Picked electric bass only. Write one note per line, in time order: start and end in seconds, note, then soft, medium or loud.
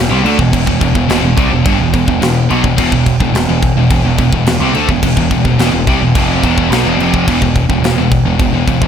0.00 0.10 E1 medium
0.11 0.24 C2 medium
0.25 0.38 D2 medium
0.39 0.52 E1 medium
0.53 0.66 E1 medium
0.66 0.80 E1 medium
0.81 0.94 E1 medium
0.95 1.09 E1 medium
1.09 1.22 E1 loud
1.23 1.37 E1 medium
1.37 1.51 C2 medium
1.52 1.65 E1 medium
1.66 1.79 G1 loud
1.80 1.93 E1 medium
1.93 2.07 E1 medium
2.08 2.21 E1 medium
2.21 2.48 E1 medium
2.50 2.63 B1 loud
2.64 2.77 E1 medium
2.77 2.91 E1 medium
2.92 3.18 E1 medium
3.20 3.34 E1 medium
3.34 3.48 E1 medium
3.48 3.75 E1 medium
3.76 3.89 E1 medium
3.90 4.04 E1 medium
4.04 4.18 E1 medium
4.18 4.32 E1 medium
4.32 4.45 E1 medium
4.46 4.59 E1 medium
4.60 4.73 C2 medium
4.73 4.87 D2 medium
4.89 5.02 E1 medium
5.02 5.16 E1 medium
5.17 5.30 E1 medium
5.30 5.44 E1 medium
5.45 5.57 E1 medium
5.58 5.71 E1 loud
5.72 5.86 E1 medium
5.87 6.00 C2 medium
6.00 6.14 E1 medium
6.15 6.41 F1 loud
6.43 6.69 E1 medium
6.70 6.83 B1 loud
6.83 6.96 E1 medium
6.97 7.24 F1 medium
7.28 7.41 E1 medium
7.42 7.68 E1 medium
7.69 7.80 E1 medium
7.81 7.95 E1 medium
7.96 8.23 E1 medium
8.24 8.38 E1 loud
8.40 8.50 E1 medium
8.51 8.65 E1 medium
8.67 8.80 E1 medium
8.82 8.88 E1 medium